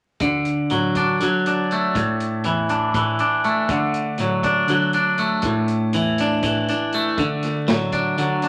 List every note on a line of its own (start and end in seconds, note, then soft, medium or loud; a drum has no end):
0.20 0.60 D2 medium
0.20 1.46 D3 medium
0.20 kick medium
0.20 closed hi-hat medium
0.45 closed hi-hat soft
0.70 1.10 A2 medium
0.70 1.21 F#3 medium
0.70 closed hi-hat medium
0.95 1.47 D4 medium
0.95 kick medium
0.95 closed hi-hat medium
1.20 1.79 D3 medium
1.20 1.96 F#3 medium
1.20 closed hi-hat medium
1.46 2.48 D4 medium
1.46 closed hi-hat medium
1.71 3.44 A3 medium
1.71 closed hi-hat soft
1.95 2.34 A2 medium
1.95 3.20 A2 medium
1.95 kick medium
1.95 closed hi-hat medium
2.20 closed hi-hat soft
2.44 2.84 E2 medium
2.44 2.94 E3 medium
2.44 closed hi-hat medium
2.69 3.20 D4 medium
2.69 closed hi-hat medium
2.94 3.54 A2 medium
2.94 3.69 E3 soft
2.94 kick medium
2.94 closed hi-hat medium
3.19 4.44 D4 medium
3.19 closed hi-hat soft
3.44 5.18 A3 medium
3.44 closed hi-hat soft
3.69 4.09 D3 medium
3.69 4.94 D3 medium
3.69 kick medium
3.69 closed hi-hat medium
3.94 closed hi-hat soft
4.18 4.58 A2 medium
4.18 4.69 F#3 medium
4.18 closed hi-hat medium
4.43 4.94 D4 medium
4.43 kick medium
4.43 closed hi-hat soft
4.68 5.27 D3 medium
4.68 5.44 F#3 medium
4.68 closed hi-hat medium
4.93 5.97 D4 medium
4.93 closed hi-hat soft
5.18 6.94 A3 medium
5.18 closed hi-hat soft
5.42 5.83 A2 medium
5.42 6.69 A2 medium
5.42 kick medium
5.42 closed hi-hat medium
5.68 closed hi-hat medium
5.93 6.33 E2 medium
5.93 6.42 E3 medium
5.93 closed hi-hat medium
6.18 6.69 D4 medium
6.18 closed hi-hat medium
6.43 7.02 A2 medium
6.43 7.18 E3 soft
6.43 kick medium
6.43 closed hi-hat medium
6.68 7.93 D4 soft
6.68 closed hi-hat medium
6.92 8.48 A3 medium
6.92 closed hi-hat soft
7.17 7.57 D3 medium
7.17 8.43 D3 medium
7.17 kick medium
7.17 closed hi-hat medium
7.43 snare soft
7.43 closed hi-hat soft
7.68 8.07 A2 medium
7.68 8.17 F#3 medium
7.68 snare medium
7.68 closed hi-hat medium
7.92 8.43 D4 medium
7.92 kick medium
7.92 closed hi-hat medium
8.17 8.48 D3 medium
8.17 8.48 F#3 medium
8.17 closed hi-hat medium
8.42 8.48 D4 medium
8.42 closed hi-hat soft